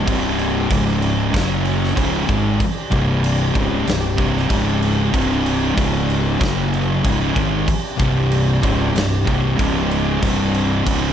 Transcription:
0.08 0.67 C1 medium
0.08 0.70 C2 loud
0.08 0.70 G2 loud
0.08 0.71 C3 loud
0.08 kick loud
0.08 crash medium
0.39 crash medium
0.70 1.30 C#1 loud
0.70 1.33 C#2 loud
0.70 1.33 G#2 loud
0.70 1.33 C#3 loud
0.70 1.97 C#4 medium
0.70 1.97 G#4 medium
0.70 kick loud
0.70 crash medium
1.02 crash medium
1.33 1.93 F#1 loud
1.33 1.95 F#2 medium
1.33 1.95 C#3 loud
1.33 1.96 F#3 loud
1.33 kick loud
1.33 snare loud
1.33 crash medium
1.65 crash medium
1.84 snare soft
1.95 2.26 C#1 loud
1.95 2.27 C#2 medium
1.95 2.26 G#2 loud
1.95 2.28 C#3 loud
1.95 4.48 C4 medium
1.95 4.48 G4 medium
1.95 4.48 D5 medium
1.95 kick loud
1.95 crash medium
2.27 2.58 G#1 loud
2.27 2.58 G#2 medium
2.27 2.59 D#3 loud
2.27 2.59 G#3 loud
2.27 kick loud
2.27 crash medium
2.60 kick loud
2.60 crash medium
2.91 3.51 C1 medium
2.91 3.54 C2 loud
2.91 3.54 G2 loud
2.91 3.54 C3 loud
2.91 kick loud
2.91 crash medium
3.24 crash medium
3.54 3.85 C#1 medium
3.54 3.85 C#2 medium
3.54 3.86 G#2 loud
3.54 3.86 C#3 medium
3.54 kick loud
3.54 crash medium
3.86 4.16 C1 medium
3.86 4.12 C2 medium
3.86 4.12 G2 medium
3.86 crash medium
3.90 snare loud
4.18 4.48 C1 medium
4.18 4.48 C2 medium
4.18 4.49 G2 medium
4.18 4.50 C3 loud
4.18 kick loud
4.18 crash medium
4.37 snare soft
4.48 5.10 C#1 medium
4.48 5.12 C#2 medium
4.48 5.12 G#2 loud
4.48 5.13 C#3 loud
4.48 kick loud
4.48 crash medium
4.82 crash medium
5.12 5.73 C1 loud
5.12 5.75 C2 medium
5.12 5.76 G2 loud
5.12 5.76 C3 loud
5.12 kick loud
5.12 crash medium
5.46 crash medium
5.76 6.37 C#1 loud
5.76 6.39 C#2 medium
5.76 6.40 G#2 loud
5.76 6.39 C#3 loud
5.76 kick loud
5.76 crash medium
5.80 7.05 C#4 medium
5.80 7.05 G#4 medium
6.10 crash medium
6.39 7.00 F#1 loud
6.39 7.02 F#2 medium
6.39 7.03 C#3 loud
6.39 7.03 F#3 loud
6.39 kick loud
6.39 crash medium
6.44 snare loud
6.74 crash medium
7.03 7.34 C#1 medium
7.03 7.33 C#2 loud
7.03 7.32 G#2 loud
7.03 7.34 C#3 loud
7.03 9.57 G4 medium
7.03 kick loud
7.03 crash medium
7.07 9.57 C4 medium
7.07 9.57 D5 medium
7.34 7.66 G#1 loud
7.34 7.66 G#2 medium
7.34 7.66 D#3 loud
7.34 7.66 G#3 loud
7.34 kick loud
7.34 crash medium
7.68 kick loud
7.68 crash medium
7.97 8.59 C1 loud
7.97 8.61 C2 medium
7.97 8.61 G2 medium
7.97 8.62 C3 loud
7.97 kick loud
7.97 crash medium
8.31 crash medium
8.63 8.93 C#1 medium
8.63 8.94 C#2 loud
8.63 8.94 G#2 loud
8.63 8.94 C#3 loud
8.63 kick loud
8.63 crash medium
8.95 9.25 C1 medium
8.95 9.20 C2 medium
8.95 9.21 G2 medium
8.95 snare loud
8.95 crash medium
9.26 9.56 C1 loud
9.26 9.57 C2 loud
9.26 9.58 G2 loud
9.26 9.58 C3 loud
9.26 kick loud
9.26 crash medium
9.58 10.18 C#1 medium
9.58 10.21 C#2 medium
9.58 10.21 G#2 loud
9.58 10.21 C#3 loud
9.58 kick loud
9.58 crash medium
9.91 crash medium
10.22 10.82 C1 medium
10.22 10.85 C2 medium
10.22 10.85 G2 loud
10.22 10.85 C3 loud
10.22 11.13 C4 medium
10.22 11.13 G4 medium
10.22 11.13 D5 medium
10.22 kick loud
10.22 crash medium
10.54 crash medium
10.85 11.13 C#1 loud
10.85 11.13 C#2 medium
10.85 11.13 G#2 loud
10.85 11.13 C#3 medium
10.85 kick loud
10.85 crash medium

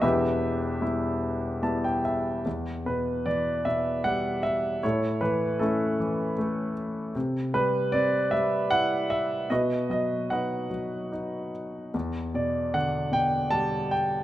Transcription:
0.02 2.42 E1 medium
0.02 2.41 E2 medium
0.02 0.81 E4 soft
0.02 2.01 G4 medium
0.02 2.01 B4 medium
0.02 2.00 E5 medium
0.81 1.61 G3 soft
0.81 1.61 B3 soft
0.81 1.61 E4 soft
1.63 2.43 G3 soft
1.63 2.43 B3 soft
1.63 2.43 E4 soft
1.63 1.83 A5 medium
1.84 2.04 G5 medium
2.05 2.43 E5 medium
2.46 4.79 E2 soft
2.86 3.64 B2 soft
2.86 3.27 B4 medium
3.26 4.80 E3 soft
3.26 3.67 D5 medium
3.65 4.80 B2 soft
3.65 4.06 E5 medium
4.04 4.81 G3 soft
4.04 4.41 F#5 medium
4.43 4.80 E5 medium
4.83 7.11 A2 medium
4.83 5.60 E4 soft
4.83 5.58 A4 soft
4.83 5.19 C#5 medium
5.21 5.98 E3 soft
5.21 5.61 B4 medium
5.59 6.37 A3 soft
5.59 6.72 C#4 soft
5.59 6.72 E4 soft
5.59 6.33 A4 medium
6.00 7.12 E3 soft
6.38 7.13 A3 medium
7.15 9.46 C3 medium
7.54 8.31 G3 soft
7.54 7.94 B4 medium
7.92 9.46 C4 soft
7.92 8.33 D5 medium
8.31 9.47 G3 soft
8.31 8.72 E5 medium
8.70 9.48 E4 soft
8.70 9.11 F#5 medium
9.10 9.47 E5 medium
9.50 11.90 B2 medium
9.50 10.67 F#4 soft
9.50 10.31 B4 soft
9.50 9.90 D#5 medium
9.90 10.69 F#3 soft
9.90 10.28 D#5 medium
10.30 11.11 D#4 soft
10.30 11.51 B4 soft
10.30 11.51 D#5 soft
10.30 11.08 F#5 medium
10.70 11.91 F#3 soft
11.12 11.92 D#4 soft
11.94 14.24 E2 medium
12.34 13.10 B2 soft
12.34 12.75 D5 medium
12.74 14.24 D3 soft
12.74 13.14 F#5 medium
13.12 14.24 B2 soft
13.12 13.53 G5 medium
13.51 14.24 G3 soft
13.51 13.92 A5 medium
13.91 14.24 G5 medium

